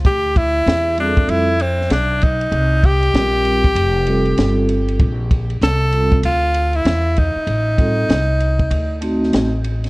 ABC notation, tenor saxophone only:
X:1
M:4/4
L:1/16
Q:"Swing 16ths" 1/4=97
K:Dm
V:1 name="Tenor saxophone"
G2 E4 D2 E2 C2 D2 _E2- | _E2 G12 z2 | z4 A4 F3 E3 _E2- | _E8- E2 z6 |]